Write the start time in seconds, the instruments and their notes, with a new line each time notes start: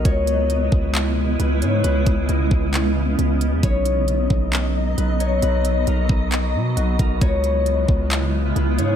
Already playing: ambient pad B3 D#5, harp F#4 A#4, synth texture D#5
0.05 808-style bass C#2, ambient pad C#3 G#3 E4, synth texture B3 E4, harp C#5, kick, closed hi-hat
0.27 closed hi-hat
0.50 closed hi-hat
0.72 808-style bass C#2, kick
0.95 clap, closed hi-hat
1.39 808-style bass C#2, harp B4, closed hi-hat
1.62 808-style bass G#2, harp C#5, closed hi-hat
1.83 808-style bass C#2, ambient pad C#4, harp B4, closed hi-hat
2.06 808-style bass C#2, kick, closed hi-hat
2.29 808-style bass C#2, harp D#5, closed hi-hat
2.51 808-style bass C#2, kick
2.74 clap, closed hi-hat
3.19 808-style bass C#2, closed hi-hat
3.41 closed hi-hat
3.52 808-style bass E2
3.63 808-style bass B1, ambient pad F#3 D#5, harp C#5, synth texture A#5, kick, closed hi-hat
3.85 closed hi-hat
4.08 closed hi-hat
4.30 808-style bass B1, kick
4.53 clap, closed hi-hat
4.98 808-style bass B1, harp B4, closed hi-hat
5.20 harp C#5, closed hi-hat
5.42 808-style bass B1, harp B4, closed hi-hat
5.65 closed hi-hat
5.87 808-style bass B1, harp A#4, closed hi-hat
6.09 808-style bass B1, kick
6.32 clap, closed hi-hat
6.54 808-style bass B2
6.76 808-style bass B1, harp F#4, closed hi-hat
6.99 808-style bass B1, harp A#4, kick, closed hi-hat
7.21 808-style bass C#2, ambient pad C#3 G#3 B3 E4, synth texture E4 D#5, harp C#5, kick, closed hi-hat
7.44 closed hi-hat
7.66 closed hi-hat
7.88 808-style bass C#2, kick
8.11 clap, closed hi-hat
8.56 808-style bass C#2, harp B4, closed hi-hat
8.78 808-style bass G#2, harp C#5, closed hi-hat